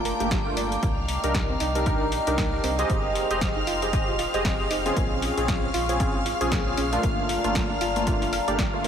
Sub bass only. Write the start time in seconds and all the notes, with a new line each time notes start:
Already playing: F1
0.20 G1
0.57 G1
0.83 C2
1.24 C2
1.60 C2
2.01 A#1
2.27 C2
2.64 C2
2.90 F1
3.31 F1
3.67 F1
4.08 D#1
4.34 F1
4.71 F1
4.97 A#1
5.37 A#1
5.74 A#1
6.15 G#1
6.41 A#1
6.78 A#1
7.03 G1
7.44 G1
7.81 G1
8.22 F1
8.48 G1
8.84 F1